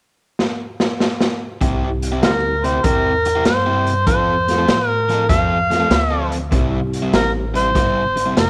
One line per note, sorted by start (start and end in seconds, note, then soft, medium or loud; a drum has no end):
0.39 snare medium
0.80 snare medium
1.00 snare medium
1.21 snare medium
1.61 2.21 C2 medium
1.61 1.88 C3 medium
1.61 2.55 G3 medium
1.61 1.88 C4 medium
1.61 2.56 C4 medium
1.61 2.56 E4 medium
1.61 1.88 E4 medium
1.61 1.88 G4 medium
1.61 2.56 G4 medium
1.61 kick loud
1.61 closed hi-hat medium
2.02 closed hi-hat medium
2.12 2.29 C3 medium
2.12 2.29 C4 medium
2.12 2.29 E4 medium
2.12 2.28 G4 medium
2.22 2.82 D2 medium
2.22 2.31 F4 medium
2.22 2.31 G4 medium
2.22 2.67 A#4 medium
2.22 snare loud
2.22 closed hi-hat medium
2.64 2.77 C3 medium
2.64 2.77 C4 medium
2.64 2.77 E4 medium
2.64 2.77 G4 loud
2.64 2.86 C5 medium
2.64 closed hi-hat medium
2.84 3.43 E2 medium
2.84 3.11 C3 medium
2.84 3.11 C4 medium
2.84 3.11 E4 medium
2.84 3.11 G4 medium
2.84 3.46 A#4 medium
2.84 kick loud
2.84 closed hi-hat medium
3.25 muted overdriven electric guitar stroke soft
3.25 closed hi-hat medium
3.35 3.45 C3 medium
3.35 3.45 C4 medium
3.35 3.45 E4 medium
3.35 3.45 G4 medium
3.45 4.05 G2 medium
3.45 4.03 C5 medium
3.45 muted overdriven electric guitar stroke soft
3.45 snare loud
3.45 closed hi-hat medium
3.66 3.90 C3 medium
3.66 3.90 C4 medium
3.66 3.90 E4 medium
3.66 3.90 G4 medium
3.87 closed hi-hat medium
4.07 4.66 F2 medium
4.07 4.33 F3 medium
4.07 4.34 C4 medium
4.07 4.34 F4 medium
4.07 4.34 A4 medium
4.07 4.88 C5 medium
4.07 kick medium
4.07 closed hi-hat medium
4.48 4.66 A3 medium
4.48 4.66 C4 medium
4.48 4.66 F4 medium
4.48 4.66 A4 medium
4.48 snare soft
4.48 closed hi-hat medium
4.58 4.75 F3 medium
4.58 4.75 C4 medium
4.58 4.74 F4 medium
4.58 4.74 A4 medium
4.68 5.27 A2 medium
4.68 snare loud
4.68 closed hi-hat medium
4.88 5.26 A#4 medium
5.09 5.22 F3 medium
5.09 5.23 C4 medium
5.09 5.23 F4 medium
5.09 5.23 A4 loud
5.09 closed hi-hat medium
5.29 5.89 F2 medium
5.29 5.56 F3 medium
5.29 5.56 C4 medium
5.29 5.56 F4 medium
5.29 5.57 A4 medium
5.29 6.28 F5 medium
5.29 kick loud
5.29 snare soft
5.29 closed hi-hat medium
5.70 5.88 A3 medium
5.70 5.89 C4 medium
5.70 5.89 F4 medium
5.70 5.89 A4 medium
5.70 muted overdriven electric guitar stroke soft
5.70 snare soft
5.70 closed hi-hat medium
5.80 5.89 F3 medium
5.80 5.90 C4 medium
5.80 5.90 F4 medium
5.80 5.90 A4 medium
5.90 6.50 D2 medium
5.90 muted overdriven electric guitar stroke soft
5.90 snare loud
5.90 closed hi-hat medium
6.11 6.35 F3 medium
6.11 6.35 C4 medium
6.11 6.35 F4 medium
6.11 6.35 A4 medium
6.32 closed hi-hat medium
6.51 7.12 C2 medium
6.51 6.79 C3 medium
6.51 7.46 G3 medium
6.51 6.79 G3 medium
6.51 6.79 C4 loud
6.51 7.47 C4 medium
6.51 7.47 E4 medium
6.51 6.79 E4 medium
6.51 7.47 G4 medium
6.51 kick loud
6.51 closed hi-hat medium
6.93 closed hi-hat medium
7.02 7.20 C3 medium
7.02 7.20 G3 medium
7.02 7.19 C4 medium
7.02 7.19 E4 medium
7.13 7.73 A1 medium
7.13 7.31 A#4 loud
7.13 snare loud
7.13 closed hi-hat medium
7.54 7.68 C3 medium
7.54 7.68 G3 medium
7.54 7.68 C4 medium
7.54 7.68 E4 medium
7.54 8.33 C5 loud
7.54 closed hi-hat medium
7.75 8.35 G1 medium
7.75 8.02 C3 medium
7.75 8.02 G3 medium
7.75 8.02 C4 medium
7.75 8.02 E4 medium
7.75 kick loud
7.75 snare soft
7.75 closed hi-hat medium
8.16 muted overdriven electric guitar stroke soft
8.16 closed hi-hat medium
8.26 8.35 C3 medium
8.26 8.35 G3 medium
8.26 8.36 C4 medium
8.26 8.35 E4 medium
8.36 8.50 F1 medium
8.36 8.50 A#4 loud
8.36 muted overdriven electric guitar stroke soft
8.36 snare loud
8.36 closed hi-hat medium